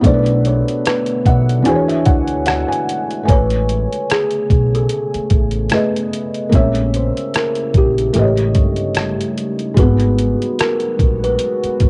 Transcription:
Already playing: B3
0.01 B1 B2 D3 A3 D4, kick, closed hi-hat
0.05 A3 C5 D5
0.13 B4
0.26 closed hi-hat
0.45 C#5, closed hi-hat
0.68 closed hi-hat
0.86 B4, cross-stick, closed hi-hat
1.06 closed hi-hat
1.26 B1 E5 F#5, kick, closed hi-hat
1.49 closed hi-hat
1.62 E2 D3 E3 G#3 D4 F#4 C#5 G#5, closed hi-hat
1.67 G#4 C5
1.75 C#5
1.88 E5, closed hi-hat
2.05 D2 F#5, kick, closed hi-hat
2.28 closed hi-hat
2.46 F#5, cross-stick, closed hi-hat
2.68 G#5
2.72 closed hi-hat
2.89 closed hi-hat
3.10 closed hi-hat
3.23 A3 G#5
3.27 A1 C#3 A3 B3 B4 C#5 G#5, kick, closed hi-hat
3.32 B4
3.50 closed hi-hat
3.69 closed hi-hat
3.93 closed hi-hat
4.10 G#4, cross-stick, closed hi-hat
4.31 closed hi-hat
4.50 B1, kick, closed hi-hat
4.75 A4, closed hi-hat
4.89 closed hi-hat
5.14 muted upright bass stroke, closed hi-hat
5.30 A1, kick, closed hi-hat
5.51 closed hi-hat
5.70 A3 G#4 B4, cross-stick, closed hi-hat
5.74 D#5
5.96 closed hi-hat
6.13 closed hi-hat
6.34 closed hi-hat
6.49 A#1 C#3 G#3 A#3 E4, kick, closed hi-hat
6.54 C#4 C#5 E5
6.75 closed hi-hat
6.94 C5, closed hi-hat
7.17 closed hi-hat
7.34 A#4, cross-stick, closed hi-hat
7.55 closed hi-hat
7.74 A#1 G4, kick, closed hi-hat
7.98 closed hi-hat
8.13 A1 G3 A3 D#4 G4 B4, closed hi-hat
8.19 D#5
8.24 C#5
8.37 closed hi-hat
8.55 G1, kick, closed hi-hat
8.76 closed hi-hat
8.95 cross-stick, closed hi-hat
9.21 closed hi-hat
9.38 closed hi-hat
9.59 closed hi-hat
9.74 G#1 F#3 G#3 B3 F#4, kick, closed hi-hat
9.79 B3 G#4 B4
10.00 closed hi-hat
10.18 closed hi-hat
10.42 closed hi-hat
10.59 A#4, cross-stick, closed hi-hat
10.80 closed hi-hat
10.99 A#1, kick, closed hi-hat
11.24 B4, closed hi-hat
11.39 closed hi-hat
11.63 muted upright bass stroke, closed hi-hat
11.80 G#1, kick, closed hi-hat

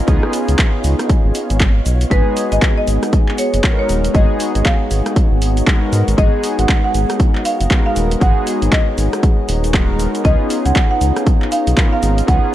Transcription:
Already playing: B3 F4 C#5 D#5 F5
0.07 C#2 B3 C#4 D#4 F4 G#4, kick, closed hi-hat, shaker
0.23 cross-stick
0.33 open hi-hat, shaker
0.48 C#2, closed hi-hat, shaker
0.59 kick, clap, closed hi-hat, shaker
0.84 C#2, open hi-hat, shaker
0.99 cross-stick, closed hi-hat, shaker
1.09 kick, closed hi-hat, shaker
1.25 G#1
1.35 open hi-hat, shaker
1.50 G#1, closed hi-hat, shaker
1.60 kick, clap, closed hi-hat, shaker
1.86 B1, open hi-hat, shaker
2.01 closed hi-hat, shaker
2.10 G#1 G#3 B3 D#4 F#4 G#4 B4 D#5, kick, closed hi-hat, shaker
2.37 open hi-hat, shaker
2.52 G#1 G#4 D#5, closed hi-hat, shaker
2.62 kick, clap, closed hi-hat, shaker
2.78 D#5
2.86 G#1 F#5, open hi-hat, shaker
3.03 cross-stick, closed hi-hat, shaker
3.13 kick, closed hi-hat, shaker
3.29 clap
3.38 C#5, open hi-hat, shaker
3.54 F#1, closed hi-hat, shaker
3.63 G#3 B3 D#4 F#4 A#4, kick, clap, closed hi-hat, shaker
3.79 C#5
3.89 D#1, open hi-hat, shaker
4.05 closed hi-hat, shaker
4.13 G#1 G#3 B3 D#4 F#4 G#4 D#5, kick, closed hi-hat, shaker
4.40 open hi-hat, shaker
4.55 G#1, closed hi-hat, shaker
4.65 F5, kick, clap, closed hi-hat, shaker
4.91 G#1, open hi-hat, shaker
5.06 cross-stick, closed hi-hat, shaker
5.16 kick, closed hi-hat, shaker
5.32 G#1
5.42 open hi-hat, shaker
5.57 closed hi-hat, shaker
5.67 G#3 B3 D#4 F#4 A#4, kick, clap, closed hi-hat, shaker
5.93 G#2, open hi-hat, shaker
6.08 G#1, closed hi-hat, shaker
6.17 G#1 G#3 B3 D#4 F#4 G#4 A#4 D#5, kick, closed hi-hat, shaker
6.44 open hi-hat, shaker
6.59 G#1 F#5, closed hi-hat, shaker
6.69 kick, clap, closed hi-hat, shaker
6.84 F#5
6.94 G#1, open hi-hat, shaker
7.10 cross-stick, closed hi-hat, shaker
7.20 kick, closed hi-hat, shaker
7.35 clap
7.45 F5, open hi-hat, shaker
7.60 F#1, closed hi-hat, shaker
7.70 G#3 B3 D#4 F#4 A#4, kick, clap, closed hi-hat, shaker
7.86 F5
7.96 D#1, open hi-hat, shaker
8.11 closed hi-hat, shaker
8.20 G#1 G#3 B3 D#4 F#4 G#4 F#5, kick, closed hi-hat, shaker
8.47 open hi-hat, shaker
8.62 G#1, closed hi-hat, shaker
8.72 D#5, kick, clap, closed hi-hat, shaker
8.98 G#1, open hi-hat, shaker
9.13 cross-stick, closed hi-hat, shaker
9.23 kick, closed hi-hat, shaker
9.49 D#1, open hi-hat, shaker
9.64 closed hi-hat, shaker
9.73 G#3 B3 D#4 F#4 A#4, kick, clap, closed hi-hat, shaker
10.00 open hi-hat, shaker
10.15 closed hi-hat, shaker
10.24 C#2 B3 C#4 D#4 F4 G#4 C#5 D#5, kick, closed hi-hat, shaker
10.50 open hi-hat, shaker
10.66 C#2 F#5, closed hi-hat, shaker
10.76 F5, kick, clap, closed hi-hat, shaker
10.91 F#5
11.01 C#2, open hi-hat, shaker
11.16 cross-stick, closed hi-hat, shaker
11.27 kick, closed hi-hat, shaker
11.42 clap
11.52 F5, open hi-hat, shaker
11.67 B1, closed hi-hat, shaker
11.77 B3 C#4 D#4 F4 A#4, kick, clap, closed hi-hat, shaker
11.93 F5
12.03 G#1, open hi-hat, shaker
12.18 closed hi-hat, shaker
12.27 C#2 B3 C#4 D#4 F4 G#4 F#5, kick, closed hi-hat, shaker

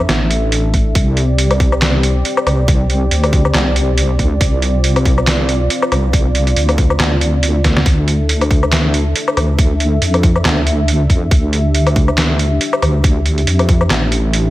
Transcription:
Already playing: D4 A4 E5
0.09 A1, snare, closed hi-hat
0.31 closed hi-hat
0.52 closed hi-hat
0.74 kick, closed hi-hat
0.95 C2 C4 G4 D5, kick, closed hi-hat
1.17 closed hi-hat
1.38 closed hi-hat
1.51 closed hi-hat, low woodblock
1.60 kick, closed hi-hat
1.72 low woodblock
1.82 snare, clap, closed hi-hat
2.03 closed hi-hat
2.25 closed hi-hat
2.37 low woodblock
2.46 C2, closed hi-hat, low woodblock
2.68 kick, closed hi-hat
2.90 closed hi-hat
3.11 D2, closed hi-hat
3.24 closed hi-hat, low woodblock
3.33 kick, closed hi-hat
3.45 low woodblock
3.54 C2, snare, clap, closed hi-hat
3.76 closed hi-hat
3.98 closed hi-hat
4.19 D2, kick, closed hi-hat
4.41 C2 F4, kick, closed hi-hat
4.62 closed hi-hat
4.84 closed hi-hat
4.96 closed hi-hat, low woodblock
5.05 kick, closed hi-hat
5.18 low woodblock
5.27 snare, clap, closed hi-hat
5.49 closed hi-hat
5.70 closed hi-hat
5.82 low woodblock
5.92 C2, closed hi-hat, low woodblock
6.13 kick, closed hi-hat
6.35 closed hi-hat
6.47 closed hi-hat
6.56 D2, closed hi-hat
6.69 closed hi-hat, low woodblock
6.78 kick, closed hi-hat
6.90 low woodblock
7.00 D2, snare, clap, closed hi-hat
7.21 closed hi-hat
7.43 closed hi-hat
7.64 kick, snare, closed hi-hat
7.77 snare
7.86 D2 D4 A4 E5, kick, closed hi-hat
8.08 closed hi-hat
8.29 closed hi-hat
8.41 closed hi-hat, low woodblock
8.51 kick, closed hi-hat
8.63 low woodblock
8.72 snare, clap, closed hi-hat
8.94 closed hi-hat
9.16 closed hi-hat
9.28 low woodblock
9.37 D2, closed hi-hat, low woodblock
9.59 kick, closed hi-hat
9.80 closed hi-hat
10.02 F2, closed hi-hat
10.14 closed hi-hat, low woodblock
10.23 kick, closed hi-hat
10.36 low woodblock
10.45 D2, snare, clap, closed hi-hat
10.67 closed hi-hat
10.88 closed hi-hat
11.10 F2, kick, closed hi-hat
11.31 D2 G4, kick, closed hi-hat
11.53 closed hi-hat
11.75 closed hi-hat
11.87 closed hi-hat, low woodblock
11.96 kick, closed hi-hat
12.08 low woodblock
12.18 snare, clap, closed hi-hat
12.39 closed hi-hat
12.61 closed hi-hat
12.73 low woodblock
12.82 D2, closed hi-hat, low woodblock
13.04 kick, closed hi-hat
13.26 closed hi-hat
13.38 closed hi-hat
13.47 F2, closed hi-hat
13.59 closed hi-hat, low woodblock
13.69 kick, closed hi-hat
13.81 low woodblock
13.90 A1, snare, clap, closed hi-hat
14.12 closed hi-hat
14.33 closed hi-hat

